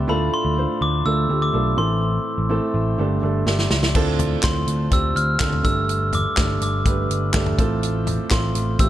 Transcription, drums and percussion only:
3.47 snare
3.59 snare
3.71 snare
3.83 snare
3.95 kick, crash
4.19 closed hi-hat, floor tom
4.43 kick, snare, clap, closed hi-hat
4.68 closed hi-hat
4.91 kick, closed hi-hat
5.17 closed hi-hat
5.40 kick, snare, clap, closed hi-hat
5.53 floor tom
5.65 kick, closed hi-hat
5.89 closed hi-hat
6.13 closed hi-hat, floor tom
6.37 kick, snare, clap, closed hi-hat
6.61 closed hi-hat
6.86 kick, closed hi-hat
7.11 closed hi-hat
7.34 kick, snare, clap, closed hi-hat
7.46 floor tom
7.59 kick, closed hi-hat
7.83 closed hi-hat
8.07 closed hi-hat, floor tom
8.31 kick, snare, clap, closed hi-hat
8.55 closed hi-hat
8.79 kick, closed hi-hat

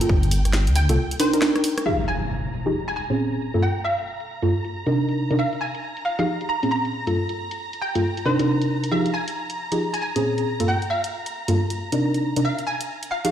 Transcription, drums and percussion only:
0.01 closed hi-hat
0.09 kick
0.23 closed hi-hat
0.31 open hi-hat
0.45 cross-stick, closed hi-hat
0.53 snare
0.67 closed hi-hat
0.76 open hi-hat
0.89 cross-stick, closed hi-hat
1.11 closed hi-hat
1.20 open hi-hat
1.33 closed hi-hat
1.42 cross-stick, snare
1.56 cross-stick, closed hi-hat
1.64 open hi-hat
1.78 cross-stick, closed hi-hat
2.22 closed hi-hat
2.44 closed hi-hat
2.66 closed hi-hat
3.10 closed hi-hat
3.32 closed hi-hat
3.54 closed hi-hat
3.76 closed hi-hat
3.98 closed hi-hat
4.20 closed hi-hat
4.42 closed hi-hat
4.64 closed hi-hat
4.87 closed hi-hat
5.09 closed hi-hat
5.31 closed hi-hat
5.53 closed hi-hat
5.75 closed hi-hat
5.97 closed hi-hat
6.19 closed hi-hat
6.41 closed hi-hat
6.63 closed hi-hat
6.85 closed hi-hat
7.07 closed hi-hat
7.29 closed hi-hat
7.51 closed hi-hat
7.73 closed hi-hat
7.95 closed hi-hat
8.17 closed hi-hat
8.39 closed hi-hat
8.62 closed hi-hat
8.84 closed hi-hat
9.06 closed hi-hat
9.28 closed hi-hat
9.50 closed hi-hat
9.72 closed hi-hat
9.94 closed hi-hat
10.16 closed hi-hat
10.38 closed hi-hat
10.60 closed hi-hat
10.82 closed hi-hat
11.04 closed hi-hat
11.26 closed hi-hat
11.48 closed hi-hat
11.70 closed hi-hat
11.92 closed hi-hat
12.14 closed hi-hat
12.36 closed hi-hat
12.59 closed hi-hat
12.81 closed hi-hat
13.03 closed hi-hat
13.25 closed hi-hat

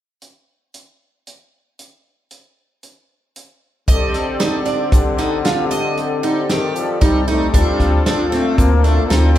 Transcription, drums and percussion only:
0.22 closed hi-hat
0.74 closed hi-hat
1.27 closed hi-hat
1.79 closed hi-hat
2.31 closed hi-hat
2.83 closed hi-hat
3.36 closed hi-hat
3.88 kick, closed hi-hat, shaker
4.14 snare, closed hi-hat
4.40 snare, closed hi-hat
4.66 closed hi-hat
4.92 kick, snare, closed hi-hat, shaker
5.19 snare, closed hi-hat
5.45 snare, closed hi-hat, shaker
5.71 closed hi-hat, shaker
5.98 closed hi-hat
6.24 closed hi-hat
6.50 snare, closed hi-hat
6.76 closed hi-hat, shaker
7.02 kick, closed hi-hat
7.28 closed hi-hat
7.54 kick, closed hi-hat, shaker
7.80 kick, snare, closed hi-hat, shaker
8.06 snare, closed hi-hat
8.33 snare, closed hi-hat
8.58 kick, closed hi-hat, shaker
8.85 snare, closed hi-hat
9.11 snare, closed hi-hat, shaker

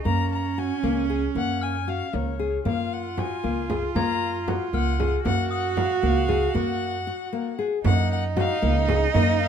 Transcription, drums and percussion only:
2.66 frame drum
3.18 frame drum
3.70 frame drum
3.96 frame drum
4.48 frame drum
5.00 frame drum
5.26 frame drum
5.77 frame drum
6.28 frame drum
6.55 frame drum
7.85 frame drum
8.37 frame drum
8.88 frame drum
9.14 frame drum

